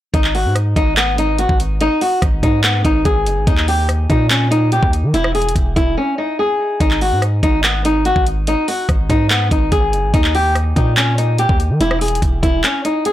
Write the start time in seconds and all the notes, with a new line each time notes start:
0.14 G#1 D#4, kick, closed hi-hat
0.24 clap
0.35 F#4, open hi-hat
0.45 G#2
0.55 cross-stick, closed hi-hat
0.76 G#1 D#4, kick, closed hi-hat
0.97 B3, clap, closed hi-hat
1.18 D#4, closed hi-hat
1.39 F#4, closed hi-hat
1.49 G#1, kick
1.60 closed hi-hat
1.81 D#4, closed hi-hat
2.01 F#4, open hi-hat
2.22 G#1, kick, cross-stick, closed hi-hat
2.43 G#2 D#4, kick, closed hi-hat
2.64 B3, clap, closed hi-hat
2.85 G#1 D#4, kick, closed hi-hat
3.05 G#1 G#4, kick, closed hi-hat
3.26 F#1, closed hi-hat
3.37 G#1
3.47 D#2 D#4, kick, closed hi-hat
3.57 clap
3.68 G4, open hi-hat
3.89 cross-stick, closed hi-hat
4.10 A#2 D#4, kick, closed hi-hat
4.30 C#4, clap, closed hi-hat
4.51 D#4, closed hi-hat
4.72 G4, closed hi-hat
4.83 D#2, kick
4.93 closed hi-hat
5.03 D#3
5.14 E1 E4, closed hi-hat
5.24 cross-stick
5.35 G#4, closed hi-hat, open hi-hat
5.42 closed hi-hat
5.49 closed hi-hat
5.56 E1, kick, closed hi-hat
5.76 E1 E4, kick, closed hi-hat
5.97 C#4
6.18 D#4
6.39 G#4
6.80 G#1 D#4, kick, closed hi-hat
6.91 clap
7.01 F#4, open hi-hat
7.12 G#2
7.22 cross-stick, closed hi-hat
7.43 G#1 D#4, kick, closed hi-hat
7.64 B3, clap, closed hi-hat
7.85 D#4, closed hi-hat
8.05 F#4, closed hi-hat
8.16 G#1, kick
8.27 closed hi-hat
8.47 D#4, closed hi-hat
8.68 F#4, open hi-hat
8.89 G#1, kick, cross-stick, closed hi-hat
9.10 G#2 D#4, kick, closed hi-hat
9.30 B3, clap, closed hi-hat
9.51 G#1 D#4, kick, closed hi-hat
9.72 G#1 G#4, kick, closed hi-hat
9.93 F#1, closed hi-hat
10.03 G#1
10.14 D#2 D#4, kick, closed hi-hat
10.24 clap
10.35 G4, open hi-hat
10.55 cross-stick, closed hi-hat
10.76 A#2 D#4, kick, closed hi-hat
10.97 C#4, clap, closed hi-hat
11.18 D#4, closed hi-hat
11.38 G4, closed hi-hat
11.49 D#2, kick
11.60 closed hi-hat
11.70 D#3
11.80 E1 E4, closed hi-hat
11.91 cross-stick
12.01 G#4, closed hi-hat, open hi-hat
12.08 closed hi-hat
12.15 closed hi-hat
12.22 E1, kick, closed hi-hat
12.43 E1 E4, kick, closed hi-hat
12.64 C#4, clap, closed hi-hat
12.85 D#4, closed hi-hat
13.05 G#4, closed hi-hat